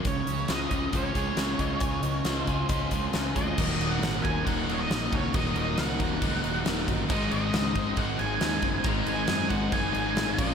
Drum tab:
CC |--------|--------|xxxxxxxx|xxxxxxxx|
HH |xxxxxxxx|xxxxxxxx|--------|--------|
SD |--o---o-|--o---o-|--o---o-|--o---o-|
BD |o--ooo-o|o--ooo-o|o--oo--o|o--oo--o|

CC |xxxxxxxx|xxxxxxxx|
HH |--------|--------|
SD |--o---o-|--o---o-|
BD |o--oo--o|o--oo--o|